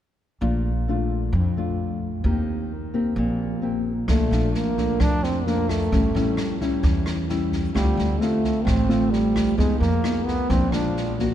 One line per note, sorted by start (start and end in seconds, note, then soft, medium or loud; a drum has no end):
0.41 1.29 A#1 medium
0.41 1.31 A#2 medium
0.41 0.71 A3 soft
0.41 0.71 D4 medium
0.41 0.71 F4 medium
0.88 1.33 A3 medium
0.88 1.34 D4 medium
0.88 1.34 F4 medium
1.33 2.21 F2 medium
1.33 2.23 F2 medium
1.57 2.21 A3 soft
1.57 2.22 D4 medium
1.57 2.22 F4 medium
2.24 3.12 D#2 medium
2.24 3.14 D#3 medium
2.24 2.71 A#3 medium
2.24 2.71 C4 soft
2.24 2.71 G4 medium
2.94 3.59 A#3 medium
2.94 3.59 C4 medium
2.94 3.59 G4 medium
3.16 4.04 A#1 medium
3.16 4.07 A#2 soft
3.62 3.92 A#3 medium
3.62 3.92 C4 medium
3.62 3.92 G4 medium
4.08 4.30 A#1 medium
4.08 4.98 A#2 medium
4.08 4.28 F3 soft
4.08 4.57 A3 medium
4.08 4.28 A3 medium
4.08 4.28 D4 medium
4.08 kick medium
4.08 cross-stick medium
4.08 snare soft
4.31 4.52 A#1 medium
4.31 4.74 F3 medium
4.31 4.74 A3 medium
4.31 4.74 D4 medium
4.31 snare soft
4.54 5.02 A#3 medium
4.54 snare soft
4.77 5.42 F3 medium
4.77 5.43 A3 medium
4.77 5.43 D4 medium
4.77 kick soft
4.77 snare soft
5.00 5.88 F2 medium
5.00 5.90 F2 medium
5.00 5.26 D4 loud
5.00 kick medium
5.00 cross-stick medium
5.00 snare soft
5.23 5.47 C4 medium
5.23 snare soft
5.46 5.90 F3 medium
5.46 5.91 A3 soft
5.46 5.70 A#3 medium
5.46 5.91 D4 medium
5.46 snare soft
5.69 6.61 A3 medium
5.69 kick soft
5.69 cross-stick medium
5.69 snare soft
5.92 6.13 A1 medium
5.92 6.82 A2 soft
5.92 6.11 G3 soft
5.92 6.11 C#4 medium
5.92 6.12 E4 soft
5.92 kick medium
5.92 snare soft
6.15 6.36 A1 medium
6.15 6.57 G3 medium
6.15 6.57 C#4 medium
6.15 6.57 E4 medium
6.15 snare soft
6.37 cross-stick medium
6.37 snare soft
6.61 7.26 G3 medium
6.61 7.26 C#4 medium
6.61 7.26 E4 medium
6.61 kick soft
6.61 snare soft
6.83 7.71 E2 medium
6.83 7.73 E3 medium
6.83 kick medium
6.83 snare soft
7.06 cross-stick medium
7.06 snare soft
7.29 7.73 G3 medium
7.29 7.74 C#4 medium
7.29 7.74 E4 medium
7.29 snare soft
7.52 kick soft
7.52 snare soft
7.74 7.97 D2 medium
7.74 8.64 D3 medium
7.74 8.23 G3 medium
7.74 8.17 A3 medium
7.74 8.17 C4 medium
7.74 8.17 F4 medium
7.74 kick medium
7.74 cross-stick medium
7.74 snare soft
7.97 8.19 D2 medium
7.97 snare soft
8.21 8.86 A3 medium
8.21 8.67 A3 medium
8.21 8.86 C4 medium
8.21 8.87 F4 medium
8.21 snare soft
8.44 kick soft
8.44 snare soft
8.65 9.55 A1 loud
8.65 9.55 A2 medium
8.65 9.12 C4 medium
8.65 kick medium
8.65 cross-stick medium
8.65 snare soft
8.88 9.54 A3 medium
8.88 9.55 C4 medium
8.88 9.54 F4 medium
8.88 snare soft
9.11 9.57 G3 medium
9.11 snare soft
9.35 kick soft
9.35 cross-stick medium
9.35 snare soft
9.58 9.80 F2 medium
9.58 10.48 F3 medium
9.58 9.79 G#3 medium
9.58 9.88 B3 medium
9.58 9.88 D#4 medium
9.58 9.88 G#4 medium
9.58 kick medium
9.58 snare soft
9.79 10.02 F2 medium
9.79 10.27 A#3 medium
9.79 snare soft
10.04 10.35 B3 medium
10.04 10.35 D#4 medium
10.04 10.36 G#4 medium
10.04 cross-stick medium
10.04 snare soft
10.26 10.51 B3 medium
10.26 kick soft
10.26 snare soft
10.50 11.34 A#1 medium
10.50 11.34 A#2 medium
10.50 10.64 F3 soft
10.50 10.64 G#3 medium
10.50 10.74 C4 medium
10.50 10.65 D4 medium
10.50 kick medium
10.50 snare soft
10.72 11.16 F3 medium
10.72 11.16 G#3 medium
10.72 11.19 D4 medium
10.72 11.16 D4 medium
10.72 cross-stick medium
10.72 snare soft
10.97 snare soft
11.19 11.34 A#3 medium
11.19 11.34 F#4 medium
11.19 kick soft
11.19 snare soft